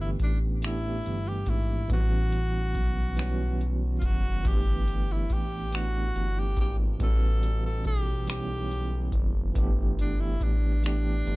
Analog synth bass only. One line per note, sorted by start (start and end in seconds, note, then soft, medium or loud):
0.00 0.16 G1 loud
0.21 1.01 A1 medium
1.06 1.44 G1 medium
1.48 1.86 G#1 medium
1.91 2.77 A1 loud
2.76 3.99 B1 medium
4.03 4.41 F#1 medium
4.45 5.26 G1 loud
5.31 6.11 A1 medium
6.16 6.54 G1 medium
6.57 6.96 G#1 medium
7.01 7.87 A1 loud
7.86 9.09 B1 medium
9.13 9.52 F#1 medium
9.56 10.37 G1 loud
10.41 11.22 A1 medium
11.27 11.36 G1 medium